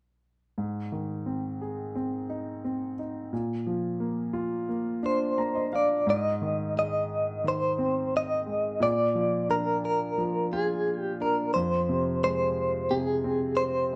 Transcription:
0.58 3.28 G#2 soft
0.92 2.26 D#3 soft
1.26 1.94 C4 soft
1.61 2.94 G#4 soft
1.95 2.63 C4 soft
2.30 2.98 D#4 soft
2.65 3.30 C4 soft
2.99 3.32 D#4 soft
3.33 6.03 A#2 soft
3.67 4.99 F3 soft
4.00 4.67 A#3 soft
4.33 5.68 F4 soft
4.69 5.37 A#3 soft
5.03 5.72 D4 soft
5.03 5.75 C5 medium
5.38 6.05 A#3 soft
5.38 5.54 A#5 soft
5.55 5.71 D#5 soft
5.73 6.06 D4 soft
5.73 6.06 D5 soft
5.73 6.05 F5 soft
6.07 8.78 G#2 soft
6.07 6.74 D#5 medium
6.42 7.43 D#3 soft
6.76 8.10 G#3 soft
6.76 7.48 D#5 medium
7.44 8.78 D#3 soft
7.48 8.16 C5 medium
7.78 8.78 C4 soft
8.17 8.82 D#5 medium
8.46 8.80 G#3 soft
8.80 11.49 A#2 medium
8.80 9.50 D5 medium
9.15 10.16 F3 soft
9.49 10.82 D4 soft
9.49 9.84 A#4 medium
9.85 10.55 A#4 medium
10.18 11.50 F3 soft
10.52 11.51 F4 soft
10.52 10.98 G#4 medium
10.98 11.17 G4 medium
11.21 11.54 D4 soft
11.21 11.53 A#4 medium
11.54 13.96 F2 soft
11.54 12.23 C5 medium
11.89 12.89 C3 soft
12.23 13.55 G#3 soft
12.23 12.93 C5 medium
12.91 13.96 C3 soft
12.91 13.61 G#4 medium
13.24 13.96 C4 soft
13.57 13.96 C5 medium

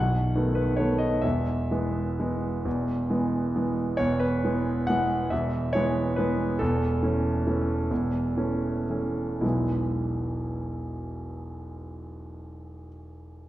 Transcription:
0.00 0.34 B0 soft
0.00 0.33 B1 soft
0.00 0.56 F#5 medium
0.35 0.75 D#3 soft
0.35 0.75 A3 soft
0.35 0.75 B3 soft
0.55 0.78 B4 soft
0.77 1.20 D#3 soft
0.77 1.20 A3 soft
0.77 1.21 B3 soft
0.77 1.00 C#5 medium
0.98 1.22 D#5 soft
1.22 1.70 E1 soft
1.22 1.70 E2 soft
1.22 3.76 E5 medium
1.71 2.15 E3 soft
1.71 2.15 G#3 soft
1.71 2.16 B3 soft
2.19 2.61 E3 soft
2.19 2.61 G#3 soft
2.19 2.62 B3 soft
2.65 3.08 E1 soft
2.65 3.08 E2 soft
3.10 3.51 E3 soft
3.10 3.51 G#3 soft
3.10 3.51 B3 soft
3.56 3.95 E3 soft
3.56 3.95 G#3 soft
3.56 3.96 B3 soft
3.97 4.42 E1 soft
3.97 4.41 E2 soft
3.97 4.20 C#5 medium
4.20 4.87 B4 medium
4.44 4.85 E3 soft
4.44 4.85 G#3 soft
4.44 4.85 B3 soft
4.87 5.28 E3 soft
4.87 5.28 G#3 soft
4.87 5.28 B3 soft
4.87 5.31 F#5 medium
5.30 5.73 E1 soft
5.30 5.73 E2 soft
5.30 5.73 E5 medium
5.73 6.15 E3 soft
5.73 6.15 G#3 soft
5.73 6.15 B3 soft
5.73 6.18 C#5 medium
6.16 6.57 E3 soft
6.16 6.57 G#3 soft
6.16 6.57 B3 soft
6.16 6.60 B4 medium
6.59 7.02 E1 soft
6.59 7.01 E2 soft
6.59 9.42 A4 medium
7.03 7.42 E3 soft
7.03 7.42 A3 soft
7.03 7.43 C#4 soft
7.47 7.86 E3 soft
7.47 7.86 A3 soft
7.47 7.87 C#4 soft
7.91 8.36 E1 soft
7.91 8.36 E2 soft
8.37 8.85 E3 soft
8.37 8.85 A3 soft
8.37 8.85 C#4 soft
8.90 9.39 E3 soft
8.90 9.40 A3 soft
8.90 9.40 C#4 soft
9.41 12.86 E1 soft
9.41 12.87 B1 soft
9.41 12.87 E3 soft
9.41 12.88 G#3 soft
9.41 12.88 B3 soft
9.41 12.86 E4 soft

